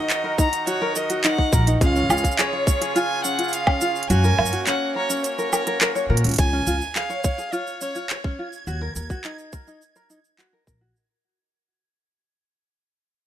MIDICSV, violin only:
0, 0, Header, 1, 2, 480
1, 0, Start_track
1, 0, Key_signature, -5, "major"
1, 0, Tempo, 571429
1, 1525, Time_signature, 4, 2, 24, 8
1, 11146, End_track
2, 0, Start_track
2, 0, Title_t, "Violin"
2, 0, Program_c, 0, 40
2, 0, Note_on_c, 0, 75, 101
2, 328, Note_off_c, 0, 75, 0
2, 333, Note_on_c, 0, 82, 95
2, 552, Note_off_c, 0, 82, 0
2, 574, Note_on_c, 0, 73, 96
2, 813, Note_on_c, 0, 75, 88
2, 826, Note_off_c, 0, 73, 0
2, 1044, Note_off_c, 0, 75, 0
2, 1049, Note_on_c, 0, 78, 98
2, 1382, Note_off_c, 0, 78, 0
2, 1532, Note_on_c, 0, 77, 106
2, 2013, Note_on_c, 0, 73, 92
2, 2026, Note_off_c, 0, 77, 0
2, 2492, Note_on_c, 0, 80, 104
2, 2504, Note_off_c, 0, 73, 0
2, 2724, Note_off_c, 0, 80, 0
2, 2729, Note_on_c, 0, 78, 96
2, 2969, Note_on_c, 0, 77, 91
2, 2982, Note_off_c, 0, 78, 0
2, 3440, Note_off_c, 0, 77, 0
2, 3445, Note_on_c, 0, 80, 108
2, 3891, Note_off_c, 0, 80, 0
2, 3926, Note_on_c, 0, 78, 89
2, 4148, Note_off_c, 0, 78, 0
2, 4171, Note_on_c, 0, 73, 86
2, 4391, Note_off_c, 0, 73, 0
2, 4411, Note_on_c, 0, 73, 89
2, 5094, Note_off_c, 0, 73, 0
2, 5367, Note_on_c, 0, 80, 105
2, 5846, Note_on_c, 0, 77, 89
2, 5859, Note_off_c, 0, 80, 0
2, 6325, Note_on_c, 0, 73, 89
2, 6337, Note_off_c, 0, 77, 0
2, 6563, Note_off_c, 0, 73, 0
2, 6568, Note_on_c, 0, 73, 82
2, 7013, Note_off_c, 0, 73, 0
2, 11146, End_track
0, 0, End_of_file